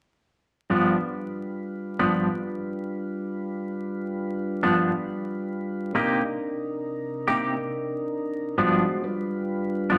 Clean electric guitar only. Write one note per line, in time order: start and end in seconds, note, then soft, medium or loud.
0.70 0.96 G2 medium
0.70 0.97 F3 medium
0.70 0.97 B3 medium
0.70 0.97 D4 medium
1.99 2.27 G2 soft
1.99 2.27 F3 medium
1.99 2.27 B3 soft
1.99 2.27 D4 medium
4.63 4.91 G2 soft
4.63 4.91 F3 soft
4.63 4.90 B3 medium
4.63 4.90 D4 medium
5.95 6.22 C3 medium
5.95 6.22 A#3 medium
5.95 6.22 D#4 medium
5.95 6.23 G4 medium
7.28 7.55 C3 medium
7.28 7.54 A#3 soft
7.28 7.54 D#4 medium
7.28 7.54 G4 medium
8.58 8.84 G2 medium
8.58 8.85 F3 medium
8.58 8.85 B3 medium
8.58 8.85 D4 medium
9.90 9.98 G2 soft
9.90 9.98 F3 soft
9.90 9.98 B3 medium
9.90 9.98 D4 medium